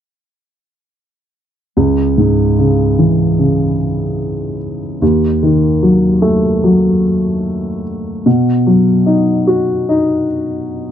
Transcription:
1.77 C#2
2.18 G#2
2.59 C#3
2.99 E3
3.39 C#3
5.02 D#2
5.43 D#3
5.83 F#3
6.22 A3
6.64 F#3
8.26 B2
8.67 F#3
9.06 D#4
9.47 F#4
9.89 D#4

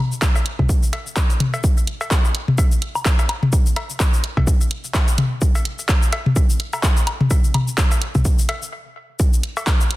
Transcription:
0.12 cabasa
0.22 kick, clap, cabasa
0.36 cowbell, cabasa
0.46 closed hi-hat
0.59 kick, mid tom
0.69 kick, cabasa
0.83 cabasa
0.93 closed hi-hat, cowbell
1.07 cabasa
1.17 kick, clap, cabasa
1.30 closed hi-hat, cabasa
1.40 closed hi-hat, mid tom
1.54 cowbell, cabasa
1.64 kick, cabasa
1.77 cabasa
1.87 closed hi-hat
2.01 cowbell, cabasa
2.11 kick, clap, cabasa
2.25 cabasa
2.35 closed hi-hat
2.48 mid tom
2.58 kick, cowbell, cabasa
2.72 cabasa
2.82 closed hi-hat
2.95 cabasa, low woodblock
3.06 kick, clap, cabasa
3.19 closed hi-hat, cowbell, cabasa
3.29 closed hi-hat, low woodblock
3.43 mid tom
3.53 kick, cabasa
3.66 cabasa
3.76 closed hi-hat, cowbell, low woodblock
3.90 cabasa
4.00 kick, clap, cabasa
4.14 cabasa
4.24 closed hi-hat
4.37 kick, mid tom, cowbell
4.47 kick, cabasa
4.61 cabasa
4.71 closed hi-hat
4.84 cabasa
4.94 kick, clap, cowbell, cabasa
5.08 closed hi-hat, cabasa
5.18 closed hi-hat, mid tom
5.42 kick, cabasa
5.55 cowbell, cabasa
5.65 closed hi-hat
5.79 cabasa
5.89 kick, clap, cabasa
6.02 cabasa
6.13 closed hi-hat, cowbell
6.26 mid tom
6.36 kick, cabasa
6.50 cabasa
6.60 closed hi-hat
6.73 cowbell, cabasa, low woodblock
6.83 kick, clap, cabasa
6.97 closed hi-hat, cabasa
7.07 closed hi-hat, low woodblock
7.21 mid tom
7.31 kick, cowbell, cabasa
7.44 cabasa
7.54 closed hi-hat, mid tom, low woodblock
7.68 cabasa
7.78 kick, clap, cabasa
7.92 cowbell, cabasa
8.02 closed hi-hat
8.15 kick, mid tom, cabasa
8.25 kick, cabasa
8.39 cabasa
8.49 closed hi-hat, cowbell
8.62 cabasa
9.20 kick, cabasa
9.33 cabasa
9.43 closed hi-hat
9.57 cowbell, cabasa, high woodblock
9.67 kick, clap, cabasa
9.81 cabasa
9.91 closed hi-hat

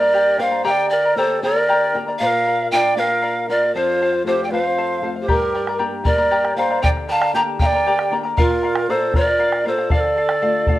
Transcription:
Already playing: G2 A#3 D4 G4 A#4 D5
0.01 A#4 D5 A#5
0.13 G4 A#4 D5 G5 A#5
0.38 A#3 D4 G4 A#4 D5 F5 G5 A#5
0.43 C5
0.51 A#4 D5 A#5
0.64 D3 G4 A#4 D5 F5 G5 A#5
0.70 D5
0.90 A#4 D5 G5 A#5
1.05 A#4 D5 A#5
1.16 A#3 D4 G4 A4 A#4 C5 D5 G5 A#5
1.42 A#3 D4 G4 A#4 D5 G5 A#5
1.56 A#4 D5 A#5
1.69 G4 A#4 D5 G5 A#5
1.94 A#3 D4 G4 A#4 D5 G5 A#5
2.08 A#4 D5 A#5
2.19 A#2 A#4 C5 D5 F5
2.26 A#4
2.47 A#4 D5 F5
2.61 D5 F5
2.71 A#3 D4 F4 A#4 D5 F5 G5
2.76 D5
2.96 A#3 D4 F4 A#4 D5 F5
3.10 D5 F5
3.22 A#4 D5 F5
3.49 A#3 D4 F4 A#4 D5 F5
3.63 D5 F5
3.75 F2 F4 A4 C5 F5
4.01 A4 C5 F5
4.14 C5 F5
4.24 A3 C4 F4 G4 A4 C5
4.28 F5
4.44 D5 G5
4.51 A3 C4 F4 A4 B4 C5 F5
4.55 F5
4.63 C5 F5
4.78 A4 C5 F5
5.02 A3 C4 F4 A4 C5 F5
5.16 C5 F5
5.21 G4 C5
5.28 G2 G4 A#4 D5 G5 A#5, bombo rim, bombo low
5.42 bombo rim
5.54 A#4 D5 G5 A#5, bombo rim
5.67 A#4 D5 A#5, bombo rim
5.79 A#3 D4 G4 A#4 D5 G5 A#5
6.04 A#3 D4 G4 A#4 D5 G5 A#5, bombo rim, bombo low
6.18 A#4 D5 A#5
6.31 G4 A#4 D5 G5 A#5
6.45 bombo rim
6.56 A#3 D4 G4 A#4 C5 D5 F5 G5 A#5
6.70 A#4 D5 A#5, bombo rim
6.82 D3 G4 A#4 D5 G5 A#5, bombo rim, bombo low
6.97 bombo rim
7.08 A#4 D5 G5 A5 A#5, bombo rim
7.12 F5
7.21 A#4 D5 A#5, bombo rim
7.33 A#3 D4 G4 A#4 D5 G5 A#5
7.59 A#3 D4 G4 A#4 D5 F5 G5 A#5, bombo rim, bombo low
7.66 D5
7.74 A#4 D5 A#5
7.87 G4 A#4 D5 G5 A#5
7.99 bombo rim
8.11 A#3 D4 G4 A#4 D5 G5 A#5
8.23 A#4 D5 A#5, bombo rim
8.37 A#2 F4 A#4 D5 F5, bombo rim, bombo low
8.51 bombo rim
8.63 A#4 D5 F5, bombo rim
8.75 D5 F5, bombo rim
8.88 A#3 D4 F4 A4 A#4 C5 D5 F5
9.14 A#3 D4 F4 A#4 C5 D5 F5, bombo rim, bombo low
9.21 A#4
9.27 D5 F5
9.39 A#4 D5 F5
9.52 bombo rim
9.65 A#3 D4 F4 A4 A#4 C5 D5 F5
9.78 D5 F5, bombo rim
9.90 D3 A4 D5 F5, bombo low
9.96 A#4
10.00 A4
10.04 bombo rim
10.16 A4 D5 F5
10.29 D5 F5, bombo rim
10.42 A3 D4 F4 A4 D5 F5, bombo rim
10.67 A3 D4 F4 A4 D5 F5, bombo low

